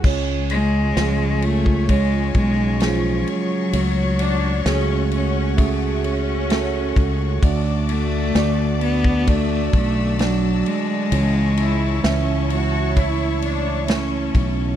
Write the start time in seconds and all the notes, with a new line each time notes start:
0.04 C#2 C#3 G#3 C#4 F4 C#5 G#5 C#6, kick, crash
0.50 G#3, ride
0.96 C#2 F3 C#4 F4 G#4, snare, ride
1.42 A3, ride
1.66 kick
1.89 G#3 C#4 F4 C#5, kick, ride
2.34 B1 G#3, kick, ride
2.80 F3 G#3 C#4 F4 G#4, snare, ride
3.27 F#3, ride
3.73 C#2 A3 F#4 C#5 F#5, ride
4.19 D4, ride
4.65 C#2 A3 C#4 F#4 G#4, snare, ride
5.12 C#4, ride
5.57 A3 C#4 F#4 G#4, kick, ride
6.04 C#4, ride
6.50 A3 C#4 F#4 A4, snare, ride
6.96 C#2, kick, ride
7.42 D2 D3 A3 D4 F#4 D5 A5 D6, kick, ride
7.89 A3, ride
8.35 D2 A3 D4 F#4 D5, snare, ride
8.81 B3, ride
9.04 kick
9.27 A3 D4 F#4 D5 E6, kick, ride
9.73 B1 A3, kick, ride
10.19 F#3 D4 F#4 D5, snare, ride
10.66 G#3, ride
11.12 C#2 C#3 E3 C#4 E4 C#5 C#6, ride
11.57 E4, ride
12.03 C#2 E3 C#4 E4 E5, snare, ride
12.50 F#4, ride
12.96 A3 E4 C#5, kick, ride
13.42 D4, ride
13.87 A3 C#4 E4 C#5, snare, ride
14.35 B1, kick, ride